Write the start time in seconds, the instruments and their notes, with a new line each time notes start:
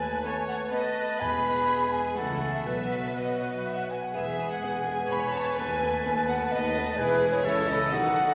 Already playing: cello section D#2, double bass section D#2, french horn section A3 B4, viola section B4, clarinet B4, violin section G#5, flute G#5, oboe A5
0.25 violin section B3 A4, viola section C#5
0.48 flute F#5, violin section F#5
0.71 violin section B3 A4 D#5, viola section B4, clarinet B4, flute D#5, oboe A5
1.20 double bass section E1, cello section E2, timpani E2, french horn section G#3 B4, violin section B3 G#4 B5, clarinet B4, oboe G#5, flute B5
1.69 viola section G#4
1.92 flute G#5, violin section G#5
2.16 double bass section C#2, cello section C#3, french horn section E3 A4, violin section A3 A4 F#5, viola section A4, clarinet A4, flute F#5, oboe A5
2.41 violin section G#4
2.53 flute E5, violin section E5
2.66 double bass section B1, cello section B2, french horn section F#3 B4, violin section B3 F#4 E5, viola section B4, clarinet B4, flute E5, oboe F#5
3.16 french horn section F#3 B4, violin section B3 F#4 D#5, clarinet B4, flute D#5, oboe F#5
3.65 flute E5, violin section E5
3.77 flute F#5, violin section F#5
3.91 violin section G#5, flute G#5
4.03 violin section F#5, flute F#5
4.13 double bass section E1, cello section E2, french horn section G#3 B4, violin section B3 G#4 E5, viola section G#4, clarinet B4, flute E5, oboe G#5
4.38 violin section B3 G#4
4.51 violin section F#5, flute F#5
4.62 double bass section E1, cello section E2, violin section B3 G#4
4.86 violin section B3 G#4 G#5, flute G#5
5.10 double bass section E1, cello section E2, violin section B3 G#4 B5, viola section C#5, flute B5
5.33 violin section B3 G#4 A5, flute A5
5.56 cello section D#2, double bass section D#2, french horn section A3, violin section B3 A4 G#5, viola section B4, flute G#5, oboe A5
5.81 violin section B3 A4
6.03 cello section D#2, double bass section D#2, violin section B3 A4, viola section B4
6.27 violin section B3 A4 F#5, flute F#5
6.50 cello section D#2, double bass section D#2, violin section B3 A4 D#5, flute D#5
6.75 violin section B3 A4
6.97 double bass section E1, cello section E2, french horn section G#3 B4, violin section E4 G#4 B4, viola section G#4, flute B4, clarinet B4, oboe G#5
7.32 flute C#5, violin section C#5
7.44 double bass section C#2, cello section C#3, french horn section E3 A4, violin section E4 A4, viola section A4, clarinet A4, oboe E5
7.68 flute D#5, violin section D#5
7.91 double bass section B1, cello section B2, french horn section D#3, violin section D#4 A4 F#5, viola section F#4, oboe D#5, flute F#5